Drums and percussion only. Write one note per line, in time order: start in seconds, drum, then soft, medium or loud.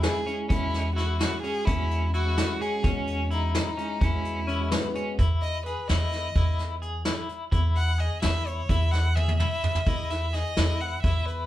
0.03 snare loud
0.03 closed hi-hat medium
0.27 closed hi-hat medium
0.50 kick loud
0.50 closed hi-hat medium
0.74 snare soft
0.74 closed hi-hat medium
0.97 snare soft
0.97 closed hi-hat medium
1.20 snare loud
1.20 closed hi-hat medium
1.44 closed hi-hat medium
1.67 kick loud
1.67 closed hi-hat medium
1.91 closed hi-hat medium
2.14 closed hi-hat medium
2.38 snare loud
2.38 closed hi-hat medium
2.61 closed hi-hat medium
2.84 kick loud
2.84 closed hi-hat medium
3.07 closed hi-hat medium
3.31 closed hi-hat soft
3.55 snare loud
3.55 closed hi-hat medium
3.78 closed hi-hat medium
4.01 kick loud
4.01 closed hi-hat medium
4.25 closed hi-hat medium
4.48 closed hi-hat medium
4.72 snare loud
4.72 closed hi-hat medium
4.95 closed hi-hat medium
5.19 kick loud
5.19 closed hi-hat medium
5.42 closed hi-hat medium
5.66 closed hi-hat medium
5.89 snare loud
5.89 closed hi-hat medium
6.12 snare soft
6.12 closed hi-hat medium
6.36 kick loud
6.36 closed hi-hat medium
6.59 snare soft
6.59 closed hi-hat medium
6.82 closed hi-hat medium
7.05 snare loud
7.05 closed hi-hat medium
7.29 closed hi-hat medium
7.52 kick loud
7.52 closed hi-hat medium
7.76 closed hi-hat medium
7.99 closed hi-hat medium
8.22 snare loud
8.22 closed hi-hat medium
8.46 closed hi-hat medium
8.69 kick loud
8.69 closed hi-hat medium
8.93 snare medium
9.16 high tom medium
9.28 high tom medium
9.40 mid tom medium
9.64 floor tom medium
9.75 floor tom medium
9.86 kick loud
9.86 closed hi-hat medium
10.10 snare soft
10.10 closed hi-hat medium
10.33 snare soft
10.33 closed hi-hat medium
10.57 snare loud
10.57 closed hi-hat medium
10.80 closed hi-hat medium
11.04 kick loud
11.04 closed hi-hat medium
11.28 closed hi-hat medium